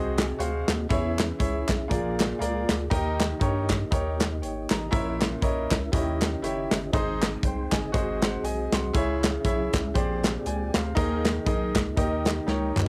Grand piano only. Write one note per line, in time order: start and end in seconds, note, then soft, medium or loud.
0.00 0.64 C3 medium
0.00 0.19 F#4 medium
0.00 0.20 G#4 medium
0.00 0.20 C5 medium
0.00 0.20 D#5 loud
0.00 0.15 G#5 medium
0.39 0.70 F#4 medium
0.39 0.70 G#4 medium
0.39 0.70 C5 medium
0.39 0.71 F5 medium
0.89 1.65 E3 medium
0.89 1.20 E4 loud
0.89 1.20 G#4 loud
0.89 1.21 C#5 loud
0.89 1.21 E5 loud
1.39 1.70 E4 medium
1.39 1.70 G#4 medium
1.39 1.70 C#5 medium
1.39 1.71 E5 loud
1.88 2.65 A#2 medium
1.88 2.20 F4 medium
1.88 2.20 G#4 medium
1.88 2.20 A#4 medium
1.88 2.21 D5 medium
2.39 2.70 F4 medium
2.39 2.71 G#4 medium
2.39 2.71 A#4 medium
2.39 2.71 D5 medium
2.90 3.66 D#3 medium
2.90 3.21 D#4 loud
2.90 3.21 G4 loud
2.90 3.21 A#4 medium
2.90 3.22 D#5 loud
3.40 3.71 D#4 medium
3.40 3.71 G4 medium
3.40 3.72 A#4 medium
3.40 3.72 C#5 loud
3.91 4.22 D#4 medium
3.91 4.22 G4 medium
3.91 4.22 A#4 medium
3.91 4.23 C#5 medium
4.42 4.69 C#5 medium
4.42 4.69 G5 medium
4.70 5.18 D#5 medium
4.70 5.19 A#5 medium
4.91 5.67 A#2 medium
4.91 5.22 E4 loud
4.91 5.22 A#4 loud
4.91 5.22 C#5 medium
4.91 5.23 E5 loud
5.41 5.72 E4 medium
5.41 5.73 A#4 medium
5.41 5.73 C#5 medium
5.41 5.73 D#5 medium
5.92 6.68 D#3 medium
5.92 6.23 E4 medium
5.92 6.23 G4 medium
5.92 6.23 C#5 medium
5.92 6.24 D#5 medium
6.42 6.73 E4 medium
6.42 6.74 G4 medium
6.42 6.74 C#5 medium
6.42 6.74 E5 medium
6.93 7.69 G#2 medium
6.93 7.24 D#4 loud
6.93 7.24 G#4 medium
6.93 7.24 C5 loud
6.93 7.25 D#5 loud
7.45 7.72 C5 medium
7.45 7.72 G5 medium
7.71 7.93 D#5 medium
7.71 8.20 G#5 medium
7.92 8.69 G#2 medium
7.92 8.24 F#4 medium
7.92 8.24 G#4 medium
7.92 8.21 C5 medium
7.92 8.23 D#5 medium
8.22 8.43 C5 medium
8.22 8.43 F#5 medium
8.44 8.72 D#5 medium
8.44 8.72 G#5 medium
8.73 9.21 F#5 medium
8.73 9.21 C6 medium
8.93 9.70 C#3 medium
8.93 9.25 E4 loud
8.93 9.25 G#4 loud
8.93 9.25 C#5 loud
8.93 9.25 E5 loud
9.44 9.75 E4 medium
9.44 9.75 G#4 medium
9.44 9.76 C#5 medium
9.44 9.76 E5 loud
9.94 10.70 A#2 medium
9.94 10.25 G4 medium
9.94 10.26 G#4 medium
9.94 10.26 C5 medium
9.94 10.26 D5 loud
10.46 10.74 D5 medium
10.46 10.73 G#5 medium
10.75 11.23 C5 medium
10.75 11.23 F5 medium
10.95 11.71 D#3 medium
10.95 11.26 D#4 loud
10.95 11.27 G#4 loud
10.95 11.27 A#4 loud
10.95 11.27 D#5 loud
11.46 11.77 D#4 medium
11.46 11.77 G#4 medium
11.46 11.77 A#4 medium
11.46 11.78 D#5 loud
11.97 12.73 D#3 medium
11.97 12.27 D#4 medium
11.97 12.28 G4 medium
11.97 12.28 A#4 medium
11.97 12.29 D#5 loud
12.47 12.78 D#4 medium
12.47 12.78 G4 medium
12.47 12.78 A#4 medium
12.47 12.79 C#5 medium